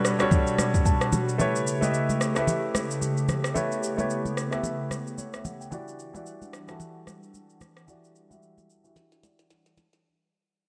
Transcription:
0.00 1.36 B2 medium
0.00 0.19 G3 medium
0.00 1.36 G3 medium
0.00 0.20 D4 medium
0.00 0.20 F#4 medium
0.00 1.36 F#4 medium
0.00 0.21 A4 medium
0.00 1.40 B4 loud
0.00 0.22 C#5 loud
0.05 cross-stick medium
0.05 shaker medium
0.19 1.05 G3 medium
0.19 1.06 D4 medium
0.19 1.06 F#4 medium
0.19 1.06 A4 medium
0.19 1.07 C#5 medium
0.19 cross-stick medium
0.19 shaker soft
0.31 kick loud
0.31 low conga medium
0.31 shaker medium
0.47 shaker medium
0.58 cross-stick medium
0.58 high conga medium
0.58 shaker loud
0.74 kick medium
0.74 shaker medium
0.86 1.36 A5 medium
0.86 kick loud
0.86 high conga soft
0.86 shaker medium
1.01 cross-stick medium
1.01 shaker soft
1.12 high conga medium
1.12 low conga medium
1.12 shaker medium
1.29 shaker soft
1.38 5.68 C#3 medium
1.38 1.72 A3 medium
1.38 3.54 A3 medium
1.38 1.73 E4 medium
1.38 1.73 G4 medium
1.38 5.68 G4 medium
1.38 1.73 B4 medium
1.38 1.74 C#5 loud
1.38 low conga medium
1.38 shaker medium
1.56 shaker medium
1.67 shaker medium
1.81 2.23 A3 medium
1.81 2.23 E4 medium
1.81 2.24 G4 medium
1.81 2.24 B4 medium
1.81 1.88 D#5 medium
1.81 high conga medium
1.81 shaker medium
1.90 2.28 E5 medium
1.90 shaker medium
2.09 high conga medium
2.09 shaker soft
2.21 cross-stick medium
2.21 shaker medium
2.35 3.21 A3 medium
2.35 3.22 E4 medium
2.35 3.22 G4 medium
2.35 3.22 B4 medium
2.35 3.23 E5 loud
2.35 cross-stick medium
2.35 shaker soft
2.47 low conga medium
2.47 shaker medium
2.75 cross-stick medium
2.75 high conga medium
2.75 shaker loud
2.91 shaker medium
3.02 high conga soft
3.02 shaker medium
3.17 shaker soft
3.29 cross-stick medium
3.29 high conga medium
3.29 low conga medium
3.29 shaker medium
3.44 cross-stick loud
3.44 shaker medium
3.54 3.88 A3 medium
3.54 5.70 B3 medium
3.54 3.89 E4 medium
3.54 3.89 G4 medium
3.54 3.89 B4 medium
3.54 3.90 C#5 medium
3.54 low conga medium
3.54 shaker medium
3.72 shaker soft
3.83 shaker medium
3.97 4.39 A3 medium
3.97 4.40 E4 medium
3.97 4.40 G4 medium
3.97 4.40 B4 medium
3.97 4.41 C#5 medium
3.97 high conga medium
3.97 shaker medium
4.10 shaker medium
4.25 high conga medium
4.25 shaker soft
4.37 cross-stick medium
4.37 shaker medium
4.51 5.38 A3 medium
4.51 5.38 E4 medium
4.51 5.38 G4 medium
4.51 5.39 B4 medium
4.51 5.19 E5 medium
4.51 cross-stick medium
4.51 shaker soft
4.63 low conga medium
4.63 shaker medium
4.91 cross-stick medium
4.91 high conga medium
4.91 shaker loud
5.07 shaker medium
5.18 5.33 C#5 medium
5.18 high conga soft
5.18 shaker medium
5.34 5.44 E5 medium
5.34 cross-stick medium
5.34 shaker soft
5.45 5.60 F#5 medium
5.45 high conga medium
5.45 low conga medium
5.45 shaker medium
5.61 5.86 G5 medium
5.61 shaker soft
5.71 6.05 E3 medium
5.71 10.00 E3 medium
5.71 10.00 G3 medium
5.71 10.00 D4 medium
5.71 6.05 E4 medium
5.71 6.05 F#4 medium
5.71 6.06 G4 medium
5.71 6.06 D5 loud
5.71 10.00 F#5 medium
5.71 low conga medium
5.71 shaker medium
5.88 shaker soft
5.99 shaker medium
6.13 6.56 E3 medium
6.13 6.56 E4 medium
6.13 6.56 F#4 medium
6.13 6.57 G4 medium
6.13 6.57 D5 medium
6.13 high conga medium
6.13 shaker medium
6.26 shaker medium
6.42 high conga medium
6.42 shaker soft
6.53 cross-stick loud
6.53 shaker medium
6.67 7.54 E3 medium
6.67 7.54 E4 medium
6.67 7.54 F#4 medium
6.67 7.55 G4 medium
6.67 7.55 A4 medium
6.67 cross-stick medium
6.67 shaker soft
6.80 low conga medium
6.80 shaker medium
7.07 cross-stick medium
7.07 high conga medium
7.07 shaker loud
7.23 shaker medium
7.34 high conga soft
7.34 shaker medium
7.50 shaker soft
7.61 cross-stick medium
7.61 high conga medium
7.61 low conga medium
7.61 shaker medium
7.77 cross-stick loud
7.77 shaker soft
7.87 8.21 E3 medium
7.87 8.21 E4 medium
7.87 8.22 F#4 medium
7.87 8.22 G4 medium
7.87 8.22 D5 medium
7.87 low conga medium
7.87 shaker medium
8.04 shaker soft
8.16 shaker medium
8.30 8.72 E3 medium
8.30 8.72 E4 medium
8.30 8.72 F#4 medium
8.30 8.73 G4 medium
8.30 8.73 E5 medium
8.30 high conga medium
8.30 shaker medium
8.42 shaker medium
8.58 high conga medium
8.58 shaker soft
8.70 shaker medium
8.84 9.70 E3 medium
8.84 9.70 E4 medium
8.84 9.71 F#4 medium
8.84 9.71 G4 medium
8.84 9.71 E5 medium
8.84 shaker soft
8.96 snare medium
8.96 low conga medium
8.96 shaker medium
9.12 snare soft
9.12 shaker soft
9.23 9.49 D5 medium
9.23 snare medium
9.23 high conga medium
9.23 shaker loud
9.39 snare medium
9.39 shaker medium
9.50 9.76 F#5 medium
9.50 snare medium
9.50 shaker medium
9.66 snare medium
9.66 shaker soft
9.77 10.03 A5 medium
9.77 snare medium
9.77 high conga medium
9.77 low conga medium
9.77 shaker medium
9.93 snare medium
9.93 shaker medium

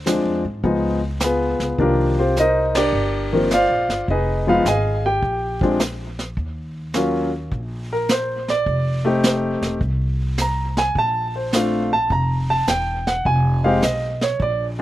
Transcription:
0.00 0.21 D2 medium
0.06 0.41 F3 soft
0.06 0.41 G#3 soft
0.06 0.41 C4 soft
0.06 0.42 D4 medium
0.06 snare medium
0.06 hi-hat pedal medium
0.25 0.43 F2 soft
0.45 0.62 G#2 medium
0.64 1.56 C#2 medium
0.64 0.99 F3 medium
0.64 0.99 G#3 medium
0.64 0.99 B3 soft
0.64 0.99 D#4 medium
0.64 brush sweep medium
0.64 kick soft
1.20 1.76 B3 medium
1.20 1.76 G#4 medium
1.20 1.76 B4 medium
1.20 snare medium
1.20 hi-hat pedal medium
1.24 1.76 F4 medium
1.60 1.77 C#2 medium
1.60 snare soft
1.79 2.89 C2 medium
1.79 2.13 D#3 soft
1.79 2.13 F3 soft
1.79 2.14 A#3 medium
1.79 2.14 D4 medium
1.79 2.18 F4 medium
1.79 2.18 G4 medium
1.79 2.17 A#4 medium
1.79 brush sweep soft
1.79 kick soft
2.19 2.36 C4 medium
2.19 2.36 F4 medium
2.19 2.36 G4 medium
2.19 2.36 C5 medium
2.36 2.76 D#4 medium
2.36 2.75 D#5 medium
2.36 snare soft
2.36 hi-hat pedal soft
2.40 2.76 A#4 medium
2.40 2.76 C5 medium
2.75 3.48 D4 medium
2.75 3.48 G4 medium
2.75 3.48 A#4 medium
2.75 3.48 D5 medium
2.75 snare medium
2.75 ride medium
2.92 3.65 G1 medium
2.92 brush sweep soft
3.33 3.49 D#3 medium
3.33 3.49 F3 medium
3.33 3.49 A#3 medium
3.33 3.49 C4 medium
3.51 4.05 F4 medium
3.51 4.06 C5 medium
3.51 4.06 D5 medium
3.51 4.05 F5 medium
3.51 snare medium
3.51 hi-hat pedal medium
3.69 3.87 A#1 medium
3.89 4.06 G1 medium
3.89 snare soft
4.08 4.61 F1 medium
4.08 4.47 D#4 medium
4.08 4.47 G#4 medium
4.08 4.47 B4 medium
4.08 4.47 D#5 medium
4.08 brush sweep soft
4.08 kick soft
4.47 4.63 F3 medium
4.47 4.64 G#3 medium
4.47 4.64 B3 medium
4.47 4.64 D#4 medium
4.47 4.66 F4 medium
4.47 4.66 G#4 medium
4.47 4.66 B4 medium
4.47 4.66 F5 medium
4.65 5.18 G#1 medium
4.65 5.04 G#4 medium
4.65 5.04 D#5 medium
4.65 5.04 F5 medium
4.65 5.04 G#5 medium
4.65 snare soft
4.65 hi-hat pedal soft
5.06 5.77 G4 medium
5.06 5.77 G5 medium
5.22 6.33 A#1 medium
5.22 brush sweep soft
5.22 kick soft
5.61 5.78 F3 medium
5.61 5.78 G#3 medium
5.61 5.78 C4 medium
5.61 5.79 D4 medium
5.61 kick soft
5.80 snare medium
5.80 hi-hat pedal soft
6.19 snare soft
6.37 7.48 D#2 medium
6.37 brush sweep soft
6.37 kick soft
6.93 7.29 F#3 medium
6.93 7.30 A#3 medium
6.93 7.30 C#4 medium
6.93 7.30 F4 medium
6.93 snare soft
6.93 hi-hat pedal soft
7.51 8.62 A#1 medium
7.51 brush sweep soft
7.51 kick soft
7.93 8.09 A#4 medium
8.09 8.48 C5 medium
8.09 snare medium
8.09 hi-hat pedal medium
8.48 9.02 D5 medium
8.48 snare soft
8.66 9.58 F1 medium
8.66 brush sweep soft
8.66 kick soft
9.05 9.77 A3 medium
9.05 9.77 C4 medium
9.05 9.77 D#4 medium
9.05 9.78 G4 medium
9.23 snare medium
9.23 hi-hat pedal soft
9.61 9.79 E1 medium
9.61 snare soft
9.81 10.92 C2 medium
9.81 brush sweep soft
9.81 kick soft
10.38 snare soft
10.38 hi-hat pedal soft
10.42 10.78 A#5 medium
10.77 10.96 G#5 medium
10.77 snare soft
10.95 12.06 A#1 medium
10.95 11.35 A5 medium
10.95 brush sweep soft
10.95 kick soft
11.36 11.53 C5 medium
11.52 11.89 A3 medium
11.52 11.88 C4 medium
11.52 11.89 D4 medium
11.52 11.89 F4 medium
11.52 11.92 F5 medium
11.52 snare soft
11.52 hi-hat pedal medium
11.93 12.10 A5 medium
12.10 12.64 F1 medium
12.10 12.49 A#5 medium
12.10 brush sweep soft
12.10 kick soft
12.50 12.68 A5 medium
12.67 13.21 E1 medium
12.67 13.06 G5 medium
12.67 snare medium
12.67 hi-hat pedal soft
13.07 13.25 F#5 medium
13.07 snare soft
13.25 13.79 F1 medium
13.25 13.63 G#5 medium
13.25 brush sweep soft
13.25 kick soft
13.64 13.81 G#3 medium
13.64 13.81 C4 medium
13.64 13.81 D#4 medium
13.64 13.81 G4 medium
13.64 13.82 F5 medium
13.82 14.36 B1 medium
13.82 14.21 D#5 medium
13.82 snare soft
13.82 hi-hat pedal medium
14.21 14.40 C#5 medium
14.21 snare soft
14.39 14.82 A#1 medium
14.39 14.65 D5 medium
14.39 brush sweep soft
14.39 kick soft

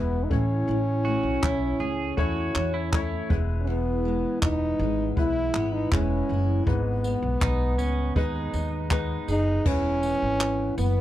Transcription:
0.00 0.24 E1 medium
0.00 0.31 E2 medium
0.00 0.33 G#3 medium
0.00 0.39 G#3 medium
0.00 0.25 B3 medium
0.00 0.33 B3 medium
0.00 0.38 B3 medium
0.00 0.31 E4 medium
0.00 2.18 E4 medium
0.00 0.33 B4 medium
0.24 0.32 D#4 medium
0.29 0.62 A1 medium
0.29 0.67 A2 medium
0.29 1.69 A3 medium
0.29 3.30 C#4 loud
0.29 1.70 C#4 medium
0.29 1.70 E4 medium
0.29 1.70 C#5 medium
0.29 kick loud
0.68 1.14 A1 medium
0.68 3.30 A2 medium
1.05 1.79 A3 medium
1.05 1.44 F#4 medium
1.23 1.39 B1 medium
1.42 1.74 B1 medium
1.42 2.54 C#4 medium
1.42 1.81 E4 medium
1.42 kick loud
1.42 clap loud
1.80 2.11 C#2 medium
1.80 2.92 A3 soft
1.80 2.17 G#4 medium
2.17 2.49 E2 medium
2.17 2.87 A3 medium
2.17 2.87 C#4 medium
2.17 5.17 E4 medium
2.17 2.88 E4 medium
2.17 2.75 F#4 medium
2.17 2.88 C#5 medium
2.17 kick loud
2.55 3.17 E2 medium
2.55 3.38 C#4 medium
2.55 clap medium
2.74 2.91 E4 medium
2.92 3.30 A3 medium
2.92 3.38 A3 medium
2.92 3.30 C#4 medium
2.92 3.38 E4 medium
2.92 3.29 E4 medium
2.92 3.31 C#5 medium
2.92 kick loud
2.92 clap loud
3.29 4.22 E1 medium
3.29 3.66 E2 medium
3.29 4.69 G#3 medium
3.29 4.69 B3 medium
3.29 4.69 E4 medium
3.29 4.70 B4 medium
3.29 kick loud
3.61 3.69 C#4 medium
3.67 6.67 E2 medium
3.67 4.41 B3 medium
4.05 4.80 G#3 medium
4.42 4.73 E1 medium
4.42 5.54 B3 medium
4.42 5.13 D#4 loud
4.42 kick loud
4.42 clap loud
4.79 5.10 G#1 medium
4.79 5.92 G#3 medium
5.16 5.48 B1 medium
5.16 5.86 G#3 medium
5.16 5.86 B3 medium
5.16 5.87 E4 medium
5.16 6.29 E4 medium
5.16 5.75 E4 loud
5.16 5.87 B4 medium
5.16 kick medium
5.54 5.85 G#1 medium
5.54 7.04 B3 medium
5.54 clap medium
5.74 5.92 D#4 medium
5.91 6.23 E1 medium
5.91 6.61 G#3 medium
5.91 7.04 G#3 medium
5.91 6.61 B3 medium
5.91 6.63 C#4 medium
5.91 6.62 E4 medium
5.91 6.62 B4 medium
5.91 kick loud
5.91 clap loud
6.29 6.60 F#1 medium
6.29 6.75 E4 medium
6.66 7.13 G#1 loud
6.66 9.65 G#2 medium
6.66 8.05 G#3 medium
6.66 8.06 B3 medium
6.66 8.87 B3 medium
6.66 8.06 D#4 medium
6.66 8.06 B4 medium
6.66 kick loud
7.04 7.79 B3 medium
7.04 tambourine medium
7.22 7.38 B1 medium
7.41 7.78 B1 medium
7.41 8.53 D#4 medium
7.41 7.78 D#4 loud
7.41 kick loud
7.41 clap loud
7.78 8.09 C#2 medium
7.78 8.91 B3 medium
7.78 8.16 C#4 medium
7.78 tambourine medium
8.15 8.47 D#2 medium
8.15 8.85 G#3 medium
8.15 8.86 B3 medium
8.15 8.90 D#4 medium
8.15 8.86 D#4 medium
8.15 9.28 G#4 medium
8.15 8.86 B4 medium
8.15 kick loud
8.53 9.15 D#2 medium
8.53 9.73 D#4 medium
8.53 tambourine medium
8.91 9.60 G#3 medium
8.91 10.03 B3 medium
8.91 9.61 B3 medium
8.91 9.62 D#4 medium
8.91 9.61 D#4 medium
8.91 9.61 B4 medium
8.91 kick loud
8.91 clap loud
9.28 9.59 F#1 medium
9.28 9.69 D#4 loud
9.28 9.66 G#4 medium
9.28 tambourine medium
9.65 10.12 E1 medium
9.65 11.01 E2 medium
9.65 11.01 G#3 medium
9.65 11.01 B3 medium
9.65 10.78 C#4 loud
9.65 11.01 E4 medium
9.65 11.01 B4 medium
9.65 kick loud
9.65 crash medium
10.03 10.77 B3 medium
10.03 tambourine medium
10.22 10.68 G#1 medium
10.41 clap loud
10.78 11.01 F#1 medium
10.78 11.01 B3 medium
10.78 11.01 B3 loud
10.78 tambourine medium

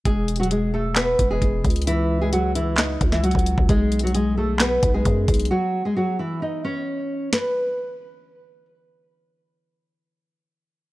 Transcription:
0.05 1.15 E1 loud
0.05 0.38 G#3 medium
0.05 0.38 G#4 loud
0.05 kick loud
0.05 closed hi-hat medium
0.28 closed hi-hat medium
0.36 0.49 F#4 medium
0.36 closed hi-hat medium
0.40 0.50 F#3 medium
0.40 closed hi-hat medium
0.51 0.71 G#3 medium
0.51 0.71 G#4 medium
0.51 closed hi-hat medium
0.74 0.94 A3 medium
0.74 0.93 A4 medium
0.96 1.29 B3 medium
0.96 1.28 B4 medium
0.96 snare loud
0.96 clap loud
0.96 closed hi-hat medium
1.19 1.41 E1 loud
1.19 kick loud
1.19 closed hi-hat medium
1.31 1.84 G#3 medium
1.31 1.84 G#4 medium
1.42 1.64 E1 loud
1.42 kick medium
1.42 closed hi-hat medium
1.65 2.97 C#2 loud
1.65 kick loud
1.65 closed hi-hat medium
1.70 closed hi-hat medium
1.76 closed hi-hat medium
1.82 closed hi-hat medium
1.87 2.20 E3 medium
1.87 2.19 E4 loud
1.87 closed hi-hat medium
2.21 2.32 G#3 medium
2.21 2.31 G#4 medium
2.33 2.53 F#3 medium
2.33 2.53 F#4 medium
2.33 closed hi-hat medium
2.55 2.76 E3 medium
2.55 2.75 E4 medium
2.55 closed hi-hat medium
2.78 3.10 D#4 medium
2.78 3.11 D#5 medium
2.78 snare loud
2.78 clap loud
2.78 closed hi-hat medium
3.01 3.34 C#2 loud
3.01 kick loud
3.01 closed hi-hat medium
3.12 3.23 E3 medium
3.12 3.22 E4 medium
3.12 snare medium
3.23 3.67 F#3 medium
3.23 3.66 F#4 medium
3.23 closed hi-hat medium
3.31 3.57 C#2 loud
3.31 kick loud
3.31 closed hi-hat medium
3.39 closed hi-hat medium
3.46 closed hi-hat medium
3.58 3.69 C#2 loud
3.58 kick loud
3.69 4.79 B1 loud
3.69 4.02 G#3 medium
3.69 4.01 G#4 loud
3.69 kick loud
3.69 closed hi-hat medium
3.92 closed hi-hat medium
3.99 4.13 F#4 medium
3.99 closed hi-hat medium
4.04 4.14 F#3 medium
4.04 closed hi-hat medium
4.15 4.35 G#3 medium
4.15 4.34 G#4 medium
4.15 closed hi-hat medium
4.37 4.58 A3 medium
4.37 4.57 A4 medium
4.59 4.93 B3 medium
4.59 4.92 B4 medium
4.59 snare loud
4.59 clap loud
4.59 closed hi-hat medium
4.83 5.05 B1 loud
4.83 kick loud
4.83 closed hi-hat medium
4.94 5.48 G#3 medium
4.94 5.48 G#4 medium
5.05 5.27 F#2 loud
5.05 kick medium
5.05 closed hi-hat medium
5.28 5.50 B1 loud
5.28 kick loud
5.28 closed hi-hat medium
5.34 closed hi-hat medium
5.40 closed hi-hat medium
5.45 closed hi-hat medium
5.51 5.83 F#3 medium
5.51 5.83 F#4 loud
5.85 5.95 G#3 medium
5.85 5.95 G#4 medium
5.97 6.17 F#3 medium
5.97 6.16 F#4 medium
6.19 6.39 E3 medium
6.19 6.39 E4 medium
6.42 6.62 D#4 medium
6.42 6.62 D#5 medium
6.65 7.29 C#4 medium
6.65 7.29 C#5 medium
7.33 8.65 B4 medium
7.33 snare loud

